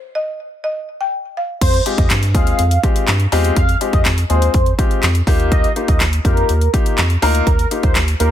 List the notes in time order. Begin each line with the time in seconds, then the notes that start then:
Already playing: C5
0.15 D#5
0.64 D#5
1.01 G5
1.37 F5
1.61 F2 C5, kick, closed hi-hat, crash
1.74 closed hi-hat
1.86 G#3 C4 F4 G4, closed hi-hat
1.98 F2 D#5, kick, closed hi-hat
2.10 G2, snare, clap, closed hi-hat
2.23 closed hi-hat
2.34 D#2 G#3 C4 F4 G#4 F5, kick, closed hi-hat
2.47 closed hi-hat
2.59 F2, closed hi-hat
2.71 closed hi-hat
2.83 G#3 C4 F4 G4, kick, closed hi-hat
2.96 closed hi-hat
3.08 G2, snare, clap, closed hi-hat
3.20 closed hi-hat
3.32 E2 G#3 C4 F4 G4, open hi-hat
3.45 closed hi-hat
3.56 F2 F5, kick, closed hi-hat
3.69 closed hi-hat
3.81 G#3 C4 F4 G4, closed hi-hat
3.93 F2 D#5, kick, closed hi-hat
4.05 F2, snare, clap, closed hi-hat
4.18 closed hi-hat
4.30 D#2 G#3 C4 F4 G#4 C5, closed hi-hat
4.42 closed hi-hat
4.54 F2, kick, closed hi-hat
4.66 closed hi-hat
4.78 G#3 C4 F4 G4, kick, closed hi-hat
4.91 closed hi-hat
5.03 F2, snare, clap, closed hi-hat
5.15 closed hi-hat
5.27 D#2 A#3 D#4 F4 G4, kick, open hi-hat
5.40 closed hi-hat
5.52 D#5, kick, closed hi-hat
5.64 closed hi-hat
5.76 A#3 D#4 F4 G4, closed hi-hat
5.88 D#2 D#5, kick, closed hi-hat
6.00 D#2, snare, clap, closed hi-hat
6.13 closed hi-hat
6.25 F2 A#3 D#4 F4 G4 A#4, kick, closed hi-hat
6.37 closed hi-hat
6.49 D#2, closed hi-hat
6.61 closed hi-hat
6.73 A#3 D#4 F4 G4, kick, closed hi-hat
6.86 closed hi-hat
6.98 F2, snare, clap, closed hi-hat
7.10 closed hi-hat
7.22 D2 A#3 D#4 F4 A#4, open hi-hat
7.35 closed hi-hat
7.47 D#2 A#4, kick, closed hi-hat
7.59 closed hi-hat
7.71 A#3 D#4 F4 G4, closed hi-hat
7.83 D#2 C5, kick, closed hi-hat
7.95 D#2, snare, clap, closed hi-hat
8.08 closed hi-hat
8.20 D#2 A#3 D#4 F4 G4 A#4, closed hi-hat